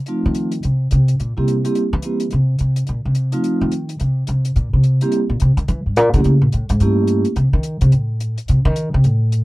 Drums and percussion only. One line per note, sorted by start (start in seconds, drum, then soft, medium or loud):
0.06 closed hi-hat soft
0.35 closed hi-hat soft
0.52 closed hi-hat soft
0.63 closed hi-hat soft
0.91 closed hi-hat soft
1.08 closed hi-hat soft
1.20 closed hi-hat soft
1.48 closed hi-hat soft
1.65 closed hi-hat soft
1.75 closed hi-hat soft
2.02 closed hi-hat soft
2.20 closed hi-hat soft
2.31 closed hi-hat soft
2.59 closed hi-hat soft
2.76 closed hi-hat soft
2.87 closed hi-hat soft
3.15 closed hi-hat soft
3.32 closed hi-hat soft
3.44 closed hi-hat soft
3.71 closed hi-hat soft
3.89 closed hi-hat soft
4.00 closed hi-hat soft
4.27 closed hi-hat soft
4.45 closed hi-hat soft
4.56 closed hi-hat soft
4.84 closed hi-hat soft
5.01 closed hi-hat soft
5.12 closed hi-hat soft
5.40 closed hi-hat soft
5.57 closed hi-hat soft
5.68 closed hi-hat soft
5.96 closed hi-hat soft
6.14 closed hi-hat soft
6.24 closed hi-hat soft
6.52 closed hi-hat soft
6.69 closed hi-hat soft
6.80 closed hi-hat soft
7.07 closed hi-hat soft
7.25 closed hi-hat soft
7.36 closed hi-hat soft
7.63 closed hi-hat soft
7.81 closed hi-hat soft
7.92 closed hi-hat soft
8.20 closed hi-hat soft
8.38 closed hi-hat soft
8.48 closed hi-hat soft
8.76 closed hi-hat soft
9.04 closed hi-hat soft
9.32 closed hi-hat soft